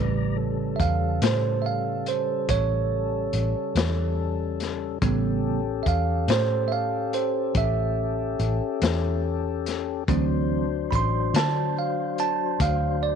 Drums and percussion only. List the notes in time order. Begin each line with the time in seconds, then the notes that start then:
0.80 kick, closed hi-hat
1.22 snare, closed hi-hat
2.06 closed hi-hat
2.49 kick, closed hi-hat
3.33 closed hi-hat
3.76 snare, closed hi-hat
4.60 snare, closed hi-hat
5.02 kick, closed hi-hat
5.86 kick, closed hi-hat
6.28 snare, closed hi-hat
7.13 closed hi-hat
7.55 kick, closed hi-hat
8.39 closed hi-hat
8.82 snare, closed hi-hat
9.66 snare, closed hi-hat
10.08 kick, closed hi-hat
10.92 kick, closed hi-hat
11.35 snare, closed hi-hat
12.18 closed hi-hat
12.60 kick, closed hi-hat